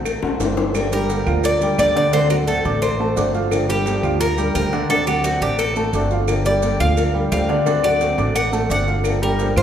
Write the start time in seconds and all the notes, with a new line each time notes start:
Already playing: A1
0.05 muted nylon-string guitar stroke, cowbell, claves, maracas
0.22 A1 A3 C4 F#4, high bongo
0.39 G1 D3 A3 C4 F#4, cowbell, low bongo, maracas
0.57 low bongo, maracas
0.74 D3 F3 A#3 D4 G4, cowbell, claves, maracas
0.92 G3 A#3 D4 G4 A#4 G5, maracas
1.09 D3 F3 A#3 D4 G4, cowbell, maracas
1.27 D2 F3 F4 F5, claves, maracas
1.44 D5, muted nylon-string guitar stroke, cowbell, maracas
1.61 G3 A#3 D4 G4 G5, maracas
1.78 D2 D3 F3 A#3 D4 G4 D5, cowbell, claves, maracas
1.95 D3 A#3 D4 G4 D5, cowbell, maracas
2.13 D3 A3 C4 D4 F#4 C5 D5, cowbell, maracas
2.30 F#3 A3 C4 F#4 A#4 F#5, claves, maracas
2.47 D3 A3 C4 F#4 A4, cowbell, maracas
2.65 A1 D4 D5 D6, cowbell, maracas
2.82 C5, muted nylon-string guitar stroke, cowbell, claves, maracas
2.99 A3 C4 F#4 A4 A5
3.16 G1 D3 A3 C4 D4 F#4 D5 D6, cowbell, maracas
3.33 F3 A3 C4 F4 F#4 F5, maracas
3.51 D3 F3 A#3 D4 G4, cowbell, claves, maracas
3.68 G3 A#3 D4 G4 G5, maracas
3.85 D3 F3 A#3 D4 G4, cowbell, maracas
4.03 D2 F3 F4 F5, claves, maracas
4.20 A#4, muted nylon-string guitar stroke, cowbell, maracas
4.37 G3 A#3 D4 G4 G5, maracas
4.54 D2 D3 F3 A#3 D4 G4 A#4, cowbell, claves, maracas
4.71 D3 A#3 D4 G4 D5, cowbell, maracas
4.89 D3 A3 C4 D4 F#4 A4 D5, cowbell, maracas
5.06 F#3 A3 C4 F#4 G4 F#5, claves, maracas
5.23 D3 A3 C4 F#4, cowbell, maracas
5.41 A1 D4 G4 D5 D6, cowbell, maracas
5.58 A4, muted nylon-string guitar stroke, cowbell, claves, maracas
5.75 A3 C4 F#4 A4 A5, maracas
5.93 G1 D3 A3 C4 D4 F#4 D5 D6, cowbell, maracas
6.10 F3 A3 C4 F4 F#4 F5, maracas
6.28 D3 F3 A#3 D4 G4, cowbell, claves, maracas
6.45 G3 A#3 D4 G4 D5 G5, maracas
6.62 D3 F3 A#3 D4 G4, cowbell, maracas
6.80 D2 F3 F4 F5, claves, maracas
6.97 muted nylon-string guitar stroke, cowbell, maracas
7.14 G3 A#3 D4 G4 G5
7.31 D2 D3 F3 A#3 D4 G4 F5, cowbell, claves, maracas
7.48 D3 A#3 D4 G4 D5, cowbell, maracas
7.66 D3 A3 C4 D4 F#4 D5, cowbell, maracas
7.83 F#3 A3 C4 F#4 D5 F#5, claves
8.00 D3 A3 C4 F#4, cowbell, maracas
8.18 A1 D4 D5 D6, cowbell, maracas
8.35 F#5, muted nylon-string guitar stroke, cowbell, claves, maracas
8.52 A3 C4 F#4 A4 A5, maracas
8.69 G1 D3 A3 C4 D4 F#4 D5 F#5 D6, cowbell, maracas
8.87 F3 A3 C4 F4 F#4 F5, maracas
9.04 D3 F3 A#3 D4 G4, cowbell, claves, maracas
9.21 G3 A#3 D4 G4 A#4 G5
9.39 D3 F3 A#3 D4 G4, cowbell, maracas
9.56 G2 F3 F4 C5 F5, claves, maracas